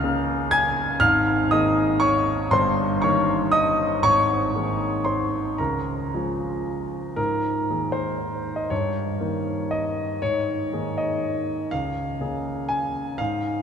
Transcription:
grand piano
Already playing: C#2 F5 F6
0.03 C#3 A#3 G#4
0.51 G#5 G#6
1.00 G#1 G#2 F5 F6
1.51 D#3 A#3 G#4 D#5 D#6
2.00 C#5 C#6
2.51 G1 G2 C5 C6
3.02 D#3 A#3 A#4 C#5 C#6
3.52 D#5 D#6
4.02 G#1 G#2 C#5 C#6
4.55 D#3 A#3 G#4
5.05 C5 C6
5.58 C#2 A#4 A#5
6.14 F3 G#3 G#4
7.16 G#2 A#4
7.70 D#3 A#3 G#4
7.92 C5
8.56 D#5
8.70 G2 C#5
9.20 D#3 A#3 A#4
9.71 D#5
10.22 G#2 C#5
10.72 D#3 A#3 G#4
10.98 D#5
11.71 C#2 F5
12.21 C#3 A#3 G#4
12.69 G#5
13.18 G#2 F5

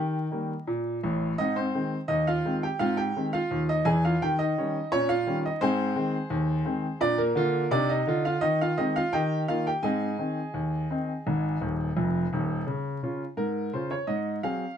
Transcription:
grand piano
Already playing: D#3 G4 D#5 G5
0.31 D#3 G3 A#3
0.67 A#2
1.03 A1 A2
1.38 G#2 C4 D#4 D#5
1.56 C4 C5
1.75 D#3 G#3 C4
2.08 D#2 D#4 D#5
2.27 F4 F5
2.45 D#3 G#3 C4
2.63 G4 G5
2.79 G#2 C4 F4 F5
2.97 G4 G5
3.16 D#3 G#3 C4
3.33 F4 F5
3.51 D#2
3.69 D#4 D#5
3.85 E2 E3 G#4 G#5
4.05 F4 F5
4.22 D#3 G4 G5
4.39 D#4 D#5
4.57 D#3 G3 C#4
4.92 A#2 C#4 C#5
5.09 F4 F5
5.26 D#3 G3 C#4
5.46 D#4 D#5
5.61 G#2 C4 G#4 C5
5.95 D#3 G#3 C4
6.30 D#2
6.65 D#3 G#3 C4
7.01 A#2 D4 D5
7.18 A#3 A#4
7.35 D3 F4
7.71 C3 D4 D#4 D5
7.89 D#4 D#5
8.07 D3 F4
8.25 F4 F5
8.41 D#3 D#4 D#5
8.61 F4 F5
8.77 D#3 G#3 C4 D#4 D#5
8.96 F4 F5
9.13 D#3 G4 D#5 G5
9.48 D#3 A#3 D#4 F4 F5
9.67 G4 G5
9.83 G#2 C4 G#4 D#5 G#5
10.18 D#3 C4 D#4
10.54 D#2
10.90 D#3 C4 D#4
11.27 G#1 G#2
11.61 D#1 D#2
11.96 F1 F2
12.33 D#1 D#2
12.67 C#3
13.03 C#3 C#4 F4
13.37 G#2 A#4
13.73 C#3 C#4 F4 C5
13.91 C#5
14.07 G#2 D#5
14.43 F#3 C4 G#4 F5

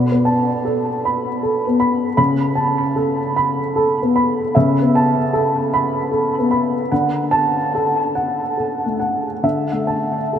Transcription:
upright piano
Already playing: B2 D5 B5
0.12 B3
0.25 A5
0.65 A4
1.05 B5
1.43 A4
1.67 B3
1.80 B5
2.17 C#3 B5
2.55 A5
2.96 A4
3.36 B5
3.76 A4
4.02 B3
4.16 B5
4.55 C#3 E5
4.82 B3
4.95 A5
5.33 A4
5.74 B5
6.11 A4
6.39 B3
6.51 B5
6.92 D3 F#5
7.31 A5
7.75 A4
8.15 F#5
8.57 A4
8.86 A3
9.00 F#5
9.43 D3 E5
9.72 A3
9.87 A5
10.33 A4

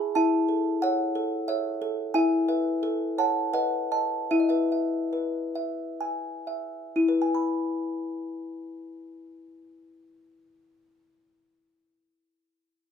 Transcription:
music box
Already playing: E4 G#4 G#5 B5
0.15 E4 E5 A5
0.49 A4
0.82 C#5 F#5
1.15 A4
1.48 C#5 E5
1.82 A4
2.14 E4 E5 G#5
2.48 B4 E5
2.83 A4
3.18 C#5 F#5 A5
3.53 B4 D#5 F#5
3.92 D#5 A5
4.31 E4 E5
4.40 D#5
4.49 B4 E5
4.72 E5
5.13 B4
5.55 E5
6.01 G#5
6.47 E5
6.96 E4
7.08 B4
7.22 G#5
7.35 B5

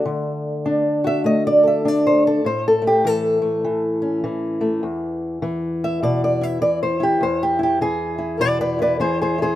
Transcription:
steel-string acoustic guitar
Already playing: A3 A4 D5
0.05 D3
0.66 D4
1.04 F#4 E5
1.24 A3 D#5
1.47 D5
1.63 A4
1.67 E5
1.85 D4 D5
2.07 C5
2.27 A4
2.44 A2 C5
2.68 A4
2.82 A3
2.87 G4
3.05 E3 A4
3.42 A3
3.64 E3
4.02 C#4
4.24 E3
4.61 A3
4.83 E2
5.42 E3
5.84 E5
6.03 B2 D5
6.24 D5
6.41 E4 E5
6.62 E3 D5
6.83 C5
7.00 E4 G4
7.21 E2 C5
7.43 G4
7.59 E4
7.63 G4
7.81 E3 G#4
8.18 E4
8.39 B2 B4 D5
8.61 B4 D5
8.79 E4 B4 D5
9.00 E3 G#4 C5
9.21 G#4 C5
9.38 E4 G#4
9.43 C5

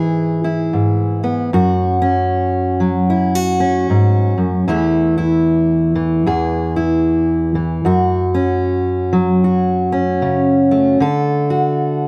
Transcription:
steel-string acoustic guitar
Already playing: G#2 E3 E4 G#4
0.44 E4
0.73 G#2
1.24 B3
1.53 F#2 F#4
2.02 C#4
2.80 F#3
3.10 E4
3.35 F#4
3.60 C#4
3.90 G#2
4.38 F#2
4.68 E2 E3 A3 E4
5.18 E4
5.95 E3
6.26 E2 G#4
6.76 E4
7.55 E3
7.85 F#2 F#4
8.34 C#4
9.13 F#3
9.44 F#4
9.92 C#4
10.22 C#3
10.71 A3
11.00 D3 A4
11.50 F#4

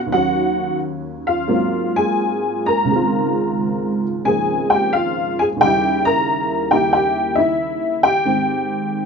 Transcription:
honky-tonk piano
Already playing: B2 A#3 B3 C#4 D#4
0.06 D#2 D#3
0.12 F#3 F#4 F#5
0.17 C#4
1.27 F4 F5
1.48 G#2 F#3 A#3 C4 F4
1.96 G#4 G#5
2.66 A#4 A#5
2.85 C#2 G#2
2.89 D#3 G#3
2.94 C4 F4
4.25 G#2 C#3 F3 A#3 D#4 G#4 G#5
4.70 G4 G5
4.93 F4 F5
5.39 G#4 G#5
5.56 D#2 C#3
5.61 G3 G4 G5
5.68 E4
6.05 A#4 A#5
6.70 D#3 A#3 E4 G4 G5
6.93 G4 G5
7.35 E4 E5
8.03 G4 G5
8.25 G#2 D#3 C4

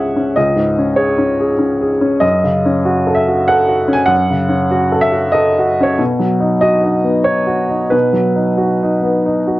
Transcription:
upright piano
Already playing: C#2 G#2 C#4 G#4 E5 F#5
0.16 C#4
0.36 C#2 D#5
0.56 G#2
0.79 C#4
0.96 G#4 C#5
1.18 C#4
1.40 G#4
1.59 C#4
1.81 G#4
2.01 C#4
2.20 F#2 D#5
2.44 C#3
2.66 C#4
2.86 F#4
3.07 A4
3.15 E5
3.28 F#4
3.48 A4 F#5
3.68 F#4
3.88 C#4
3.93 G#5
4.06 F#2 F#5
4.30 C#3
4.49 C#4
4.71 F#4
4.92 A4
5.01 E5
5.12 F#4
5.32 A4 D#5
5.59 F#4
5.81 C#4 C#5
5.98 B2
6.19 F#3
6.40 D#4
6.61 F#4 D#5
6.83 D#4
7.05 B3
7.24 D#4 C#5
7.47 F#4
7.69 D#4
7.90 B2 B4
8.13 F#3
8.36 D#4
8.57 F#4
8.83 D#4
9.02 B3
9.26 D#4
9.47 F#4

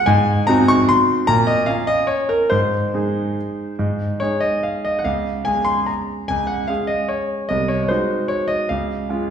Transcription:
grand piano
0.06 G#2 G#5
0.47 C4 D#4 F#4 A#5
0.68 C#6
0.89 C6
1.27 A#2 A#5
1.47 D#5
1.66 C#4 F4 F5
1.87 D#5
2.07 C#5
2.29 A#4
2.50 G#2 C5
2.94 G#3 D#4 G#4
3.79 G#2
4.20 G#3 D#4 G#4 C#5
4.40 D#5
4.63 F5
4.85 D#5
4.99 F#5
5.04 C#2 F5
5.45 G#3 C#4 G#4 G#5
5.65 C6
5.86 A#5
6.28 C#2 G#5
6.47 F#5
6.68 G#3 C#4 G#4 F5
6.87 D#5
7.09 C#5
7.49 C2 D#5
7.68 C#5
7.83 C#5
7.88 G#3 D#4 F#4 C5
8.28 C#5
8.48 D#5
8.69 C#2 F5
9.09 G#3 C#4 F4

